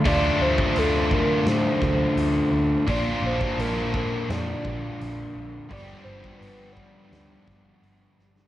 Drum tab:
HH |o---o---o---o---|o---o---o---o---|o---o---o---o---|
SD |--------o-o-----|--------o-------|--------o-o---oo|
BD |o--o--o---o-----|o--o--o---o-----|o--o--o---o-----|